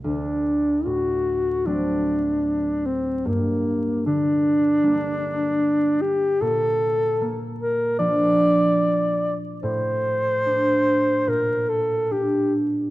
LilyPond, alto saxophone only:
\new Staff \with { instrumentName = "Alto saxophone" } { \time 4/4 \key g \minor \tempo 4 = 75 d'4 fis'4 d'4. c'8 | bes4 d'2~ d'8 g'8 | a'4. bes'8 d''4. r8 | c''2 bes'8 a'8 g'8 r8 | }